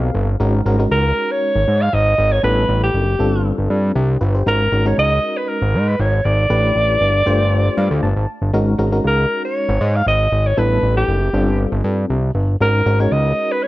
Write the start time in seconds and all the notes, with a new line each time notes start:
Already playing: B1 C4 G4 A4 F5
0.15 G1
0.40 G#1 G#3 C#4 D#4 F#4 A#4
0.66 G#1 G#3 C#4 D#4 F#4 A#4
0.79 G#3 C#4 D#4 F#4 A#4
0.91 C#2 A#4
1.31 C#5
1.55 G#1
1.68 G#2
1.82 F5
1.93 G#1 D#5
2.18 G#1
2.32 C#5
2.43 A1 G3 B3 C#4 E4 A4 B4
2.49 D4
2.69 A1
2.84 G4
2.94 F#1
3.19 G1 G3 C4 D4 F4 A4
3.58 G1
3.70 G2
3.95 C2 D4 G4
4.21 G1 F4 B4
4.34 G4 C5
4.46 G#1 G#3 C#4 D#4 F#4 A#4
4.72 G#1 G#3 C#4 D#4 F#4 A#4
4.85 G#3 C#4 D#4 F#4 A#4 C#5
4.98 C#2 D#5
5.37 B4
5.49 A#4
5.62 G#1
5.74 G#2
5.88 B4
6.00 G#1 C#5
6.25 G#1 D5
6.50 A1 A3 D4 E4 G4 B4
6.76 A1
7.01 G1
7.26 G1 A3 D4 F4 G4 C5
7.77 G2 F5
7.91 D2
8.03 G1 A5
8.16 G#1
8.42 G1
8.53 G#1 G#3 C#4 D#4 F#4 A#4
8.78 G#1 G#3 C#4 D#4 F#4 A#4
8.92 G#3 C#4 D#4 F#4 A#4
9.04 C#2 A#4
9.45 C#5
9.69 G#1
9.81 G#2
9.96 F5
10.07 G#1 D#5
10.32 G#1
10.47 C#5
10.57 A1 G3 B3 D4 E4 A4 B4
10.83 A1
10.97 G4
11.08 F#1
11.33 G1 G3 C4 D4 F4 A4
11.72 G1
11.84 G2
12.10 C2
12.35 G1
12.61 G#1 G#3 C#4 D#4 F#4 A#4
12.86 G#1 G#3 C#4 D#4 F#4 A#4
12.99 G#3 C#4 D#4 F#4 A#4 C#5
13.12 C#2 D#5
13.52 B4
13.63 C#5